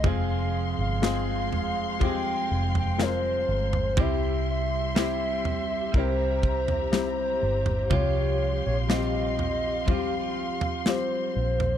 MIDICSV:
0, 0, Header, 1, 7, 480
1, 0, Start_track
1, 0, Tempo, 983607
1, 21, Time_signature, 4, 2, 24, 8
1, 5748, End_track
2, 0, Start_track
2, 0, Title_t, "String section"
2, 0, Program_c, 0, 48
2, 22, Note_on_c, 0, 56, 60
2, 25, Note_on_c, 0, 77, 57
2, 25, Note_on_c, 0, 84, 69
2, 1922, Note_off_c, 0, 56, 0
2, 1924, Note_off_c, 0, 77, 0
2, 1924, Note_off_c, 0, 84, 0
2, 1940, Note_on_c, 0, 67, 64
2, 1942, Note_on_c, 0, 76, 59
2, 1943, Note_on_c, 0, 84, 66
2, 2893, Note_off_c, 0, 84, 0
2, 2905, Note_on_c, 0, 82, 72
2, 3842, Note_off_c, 0, 76, 0
2, 3854, Note_off_c, 0, 82, 0
2, 3862, Note_on_c, 0, 77, 55
2, 3862, Note_on_c, 0, 84, 65
2, 5748, Note_off_c, 0, 67, 0
2, 5748, Note_off_c, 0, 77, 0
2, 5748, Note_off_c, 0, 84, 0
2, 5748, End_track
3, 0, Start_track
3, 0, Title_t, "Soft synth lead"
3, 0, Program_c, 1, 80
3, 35, Note_on_c, 1, 77, 106
3, 388, Note_off_c, 1, 77, 0
3, 395, Note_on_c, 1, 77, 85
3, 500, Note_off_c, 1, 77, 0
3, 512, Note_on_c, 1, 77, 101
3, 988, Note_on_c, 1, 79, 101
3, 996, Note_off_c, 1, 77, 0
3, 1345, Note_off_c, 1, 79, 0
3, 1360, Note_on_c, 1, 79, 92
3, 1472, Note_on_c, 1, 72, 90
3, 1480, Note_off_c, 1, 79, 0
3, 1953, Note_on_c, 1, 76, 96
3, 1960, Note_off_c, 1, 72, 0
3, 2187, Note_off_c, 1, 76, 0
3, 2196, Note_on_c, 1, 76, 115
3, 2914, Note_on_c, 1, 72, 96
3, 2921, Note_off_c, 1, 76, 0
3, 3388, Note_off_c, 1, 72, 0
3, 3391, Note_on_c, 1, 72, 96
3, 3866, Note_on_c, 1, 73, 98
3, 3874, Note_off_c, 1, 72, 0
3, 4224, Note_off_c, 1, 73, 0
3, 4227, Note_on_c, 1, 73, 79
3, 4280, Note_off_c, 1, 73, 0
3, 4346, Note_on_c, 1, 75, 90
3, 4834, Note_on_c, 1, 77, 92
3, 4841, Note_off_c, 1, 75, 0
3, 5308, Note_on_c, 1, 72, 86
3, 5315, Note_off_c, 1, 77, 0
3, 5748, Note_off_c, 1, 72, 0
3, 5748, End_track
4, 0, Start_track
4, 0, Title_t, "Clean electric guitar"
4, 0, Program_c, 2, 27
4, 18, Note_on_c, 2, 41, 65
4, 21, Note_on_c, 2, 48, 68
4, 25, Note_on_c, 2, 53, 70
4, 26, Note_on_c, 2, 56, 72
4, 29, Note_on_c, 2, 60, 74
4, 31, Note_on_c, 2, 68, 75
4, 492, Note_off_c, 2, 53, 0
4, 498, Note_on_c, 2, 53, 49
4, 500, Note_off_c, 2, 41, 0
4, 500, Note_off_c, 2, 56, 0
4, 501, Note_off_c, 2, 48, 0
4, 506, Note_off_c, 2, 68, 0
4, 506, Note_on_c, 2, 56, 52
4, 507, Note_off_c, 2, 60, 0
4, 509, Note_on_c, 2, 60, 52
4, 515, Note_on_c, 2, 68, 64
4, 967, Note_off_c, 2, 53, 0
4, 973, Note_on_c, 2, 53, 50
4, 982, Note_off_c, 2, 56, 0
4, 988, Note_on_c, 2, 56, 51
4, 989, Note_off_c, 2, 68, 0
4, 997, Note_off_c, 2, 60, 0
4, 999, Note_on_c, 2, 60, 51
4, 1009, Note_on_c, 2, 68, 50
4, 1937, Note_off_c, 2, 53, 0
4, 1940, Note_on_c, 2, 48, 67
4, 1942, Note_on_c, 2, 55, 73
4, 1944, Note_off_c, 2, 56, 0
4, 1946, Note_off_c, 2, 60, 0
4, 1946, Note_on_c, 2, 60, 70
4, 1948, Note_on_c, 2, 64, 75
4, 1949, Note_off_c, 2, 68, 0
4, 1951, Note_on_c, 2, 67, 87
4, 2415, Note_off_c, 2, 55, 0
4, 2417, Note_on_c, 2, 55, 55
4, 2421, Note_off_c, 2, 48, 0
4, 2421, Note_off_c, 2, 60, 0
4, 2423, Note_off_c, 2, 64, 0
4, 2423, Note_on_c, 2, 60, 54
4, 2428, Note_on_c, 2, 64, 53
4, 2431, Note_off_c, 2, 67, 0
4, 2433, Note_on_c, 2, 67, 58
4, 2886, Note_off_c, 2, 55, 0
4, 2888, Note_on_c, 2, 55, 45
4, 2902, Note_off_c, 2, 60, 0
4, 2904, Note_on_c, 2, 60, 46
4, 2905, Note_off_c, 2, 64, 0
4, 2916, Note_on_c, 2, 64, 48
4, 2923, Note_off_c, 2, 67, 0
4, 2925, Note_on_c, 2, 67, 54
4, 3856, Note_on_c, 2, 48, 69
4, 3858, Note_off_c, 2, 55, 0
4, 3860, Note_on_c, 2, 53, 75
4, 3863, Note_off_c, 2, 64, 0
4, 3865, Note_on_c, 2, 65, 69
4, 3866, Note_off_c, 2, 67, 0
4, 3868, Note_on_c, 2, 67, 81
4, 4332, Note_off_c, 2, 53, 0
4, 4338, Note_on_c, 2, 53, 51
4, 4339, Note_off_c, 2, 48, 0
4, 4341, Note_off_c, 2, 60, 0
4, 4342, Note_off_c, 2, 65, 0
4, 4343, Note_on_c, 2, 60, 54
4, 4348, Note_on_c, 2, 65, 57
4, 4351, Note_off_c, 2, 67, 0
4, 4353, Note_on_c, 2, 67, 58
4, 4803, Note_off_c, 2, 53, 0
4, 4809, Note_on_c, 2, 53, 45
4, 4818, Note_off_c, 2, 60, 0
4, 4824, Note_on_c, 2, 60, 47
4, 4825, Note_off_c, 2, 65, 0
4, 4835, Note_on_c, 2, 65, 51
4, 4843, Note_off_c, 2, 67, 0
4, 4845, Note_on_c, 2, 67, 49
4, 5748, Note_off_c, 2, 53, 0
4, 5748, Note_off_c, 2, 60, 0
4, 5748, Note_off_c, 2, 65, 0
4, 5748, Note_off_c, 2, 67, 0
4, 5748, End_track
5, 0, Start_track
5, 0, Title_t, "Felt piano"
5, 0, Program_c, 3, 0
5, 0, Control_c, 3, 64, 127
5, 17, Note_on_c, 3, 56, 65
5, 19, Note_on_c, 3, 60, 56
5, 21, Note_on_c, 3, 65, 53
5, 23, Note_on_c, 3, 68, 71
5, 28, Control_c, 3, 64, 0
5, 126, Control_c, 3, 64, 127
5, 475, Note_off_c, 3, 56, 0
5, 476, Note_off_c, 3, 60, 0
5, 477, Note_off_c, 3, 65, 0
5, 479, Note_off_c, 3, 68, 0
5, 497, Note_on_c, 3, 56, 69
5, 499, Note_on_c, 3, 60, 64
5, 500, Note_on_c, 3, 65, 64
5, 504, Note_on_c, 3, 68, 73
5, 956, Note_off_c, 3, 56, 0
5, 956, Note_off_c, 3, 60, 0
5, 957, Note_off_c, 3, 65, 0
5, 959, Note_off_c, 3, 68, 0
5, 977, Note_on_c, 3, 56, 63
5, 979, Note_on_c, 3, 60, 57
5, 982, Note_on_c, 3, 65, 58
5, 986, Note_on_c, 3, 67, 74
5, 1435, Note_off_c, 3, 56, 0
5, 1437, Note_off_c, 3, 60, 0
5, 1438, Note_off_c, 3, 65, 0
5, 1440, Note_off_c, 3, 67, 0
5, 1456, Note_on_c, 3, 56, 69
5, 1458, Note_on_c, 3, 60, 59
5, 1460, Note_on_c, 3, 70, 74
5, 1461, Note_on_c, 3, 65, 63
5, 1915, Note_off_c, 3, 56, 0
5, 1916, Note_off_c, 3, 60, 0
5, 1917, Note_off_c, 3, 65, 0
5, 1917, Note_off_c, 3, 70, 0
5, 1938, Note_on_c, 3, 55, 61
5, 1940, Note_on_c, 3, 48, 55
5, 1940, Note_on_c, 3, 60, 60
5, 1943, Note_on_c, 3, 64, 54
5, 1944, Note_on_c, 3, 67, 70
5, 1948, Control_c, 3, 64, 0
5, 2041, Control_c, 3, 64, 127
5, 2396, Note_off_c, 3, 55, 0
5, 2397, Note_off_c, 3, 60, 0
5, 2398, Note_off_c, 3, 64, 0
5, 2399, Note_off_c, 3, 67, 0
5, 2416, Note_on_c, 3, 55, 68
5, 2418, Note_on_c, 3, 60, 62
5, 2420, Note_on_c, 3, 64, 65
5, 2422, Note_on_c, 3, 67, 75
5, 2641, Note_off_c, 3, 48, 0
5, 2875, Note_off_c, 3, 55, 0
5, 2876, Note_off_c, 3, 60, 0
5, 2877, Note_off_c, 3, 64, 0
5, 2878, Note_off_c, 3, 67, 0
5, 2893, Note_on_c, 3, 55, 60
5, 2896, Note_on_c, 3, 60, 56
5, 2899, Note_on_c, 3, 64, 56
5, 2902, Note_on_c, 3, 70, 71
5, 3353, Note_off_c, 3, 55, 0
5, 3355, Note_off_c, 3, 60, 0
5, 3356, Note_off_c, 3, 64, 0
5, 3358, Note_off_c, 3, 70, 0
5, 3374, Note_on_c, 3, 55, 65
5, 3377, Note_on_c, 3, 60, 62
5, 3379, Note_on_c, 3, 64, 56
5, 3379, Note_on_c, 3, 67, 67
5, 3834, Note_off_c, 3, 55, 0
5, 3835, Note_off_c, 3, 60, 0
5, 3836, Note_off_c, 3, 64, 0
5, 3836, Note_off_c, 3, 67, 0
5, 3854, Note_on_c, 3, 55, 60
5, 3855, Note_on_c, 3, 48, 52
5, 3858, Note_on_c, 3, 65, 54
5, 3858, Note_on_c, 3, 67, 69
5, 3867, Control_c, 3, 64, 0
5, 3958, Control_c, 3, 64, 127
5, 4314, Note_off_c, 3, 55, 0
5, 4316, Note_off_c, 3, 65, 0
5, 4316, Note_off_c, 3, 67, 0
5, 4335, Note_on_c, 3, 55, 68
5, 4337, Note_on_c, 3, 60, 62
5, 4338, Note_on_c, 3, 65, 65
5, 4340, Note_on_c, 3, 67, 74
5, 4559, Note_off_c, 3, 48, 0
5, 4794, Note_off_c, 3, 55, 0
5, 4795, Note_off_c, 3, 60, 0
5, 4796, Note_off_c, 3, 65, 0
5, 4797, Note_off_c, 3, 67, 0
5, 4814, Note_on_c, 3, 55, 62
5, 4814, Note_on_c, 3, 60, 57
5, 4819, Note_on_c, 3, 65, 58
5, 4821, Note_on_c, 3, 67, 69
5, 5274, Note_off_c, 3, 55, 0
5, 5274, Note_off_c, 3, 60, 0
5, 5276, Note_off_c, 3, 65, 0
5, 5277, Note_off_c, 3, 67, 0
5, 5298, Note_on_c, 3, 55, 64
5, 5300, Note_on_c, 3, 60, 60
5, 5302, Note_on_c, 3, 65, 58
5, 5305, Note_on_c, 3, 67, 68
5, 5748, Note_off_c, 3, 55, 0
5, 5748, Note_off_c, 3, 60, 0
5, 5748, Note_off_c, 3, 65, 0
5, 5748, Note_off_c, 3, 67, 0
5, 5748, End_track
6, 0, Start_track
6, 0, Title_t, "Fingered electric bass"
6, 0, Program_c, 4, 33
6, 20, Note_on_c, 4, 29, 87
6, 362, Note_off_c, 4, 29, 0
6, 384, Note_on_c, 4, 31, 79
6, 746, Note_off_c, 4, 31, 0
6, 746, Note_on_c, 4, 29, 83
6, 1204, Note_off_c, 4, 29, 0
6, 1227, Note_on_c, 4, 29, 66
6, 1685, Note_off_c, 4, 29, 0
6, 1702, Note_on_c, 4, 31, 74
6, 1925, Note_off_c, 4, 31, 0
6, 1941, Note_on_c, 4, 36, 108
6, 2882, Note_off_c, 4, 36, 0
6, 2901, Note_on_c, 4, 36, 78
6, 3602, Note_off_c, 4, 36, 0
6, 3624, Note_on_c, 4, 31, 68
6, 3846, Note_off_c, 4, 31, 0
6, 3858, Note_on_c, 4, 36, 92
6, 4200, Note_off_c, 4, 36, 0
6, 4228, Note_on_c, 4, 34, 75
6, 5067, Note_off_c, 4, 34, 0
6, 5067, Note_on_c, 4, 36, 76
6, 5525, Note_off_c, 4, 36, 0
6, 5546, Note_on_c, 4, 34, 74
6, 5748, Note_off_c, 4, 34, 0
6, 5748, End_track
7, 0, Start_track
7, 0, Title_t, "Drums"
7, 19, Note_on_c, 9, 43, 79
7, 20, Note_on_c, 9, 36, 99
7, 68, Note_off_c, 9, 43, 0
7, 69, Note_off_c, 9, 36, 0
7, 503, Note_on_c, 9, 38, 101
7, 551, Note_off_c, 9, 38, 0
7, 744, Note_on_c, 9, 43, 55
7, 793, Note_off_c, 9, 43, 0
7, 982, Note_on_c, 9, 36, 81
7, 984, Note_on_c, 9, 43, 56
7, 1031, Note_off_c, 9, 36, 0
7, 1032, Note_off_c, 9, 43, 0
7, 1343, Note_on_c, 9, 43, 60
7, 1391, Note_off_c, 9, 43, 0
7, 1462, Note_on_c, 9, 38, 90
7, 1510, Note_off_c, 9, 38, 0
7, 1821, Note_on_c, 9, 43, 58
7, 1870, Note_off_c, 9, 43, 0
7, 1937, Note_on_c, 9, 43, 82
7, 1941, Note_on_c, 9, 36, 102
7, 1986, Note_off_c, 9, 43, 0
7, 1990, Note_off_c, 9, 36, 0
7, 2422, Note_on_c, 9, 38, 103
7, 2471, Note_off_c, 9, 38, 0
7, 2660, Note_on_c, 9, 43, 55
7, 2709, Note_off_c, 9, 43, 0
7, 2899, Note_on_c, 9, 36, 82
7, 2948, Note_off_c, 9, 36, 0
7, 3139, Note_on_c, 9, 36, 89
7, 3188, Note_off_c, 9, 36, 0
7, 3261, Note_on_c, 9, 43, 61
7, 3310, Note_off_c, 9, 43, 0
7, 3381, Note_on_c, 9, 38, 97
7, 3430, Note_off_c, 9, 38, 0
7, 3737, Note_on_c, 9, 43, 63
7, 3786, Note_off_c, 9, 43, 0
7, 3858, Note_on_c, 9, 43, 86
7, 3859, Note_on_c, 9, 36, 100
7, 3907, Note_off_c, 9, 43, 0
7, 3908, Note_off_c, 9, 36, 0
7, 4342, Note_on_c, 9, 38, 101
7, 4390, Note_off_c, 9, 38, 0
7, 4582, Note_on_c, 9, 43, 52
7, 4631, Note_off_c, 9, 43, 0
7, 4821, Note_on_c, 9, 36, 79
7, 4822, Note_on_c, 9, 43, 57
7, 4869, Note_off_c, 9, 36, 0
7, 4871, Note_off_c, 9, 43, 0
7, 5179, Note_on_c, 9, 43, 64
7, 5228, Note_off_c, 9, 43, 0
7, 5299, Note_on_c, 9, 38, 92
7, 5348, Note_off_c, 9, 38, 0
7, 5661, Note_on_c, 9, 43, 66
7, 5709, Note_off_c, 9, 43, 0
7, 5748, End_track
0, 0, End_of_file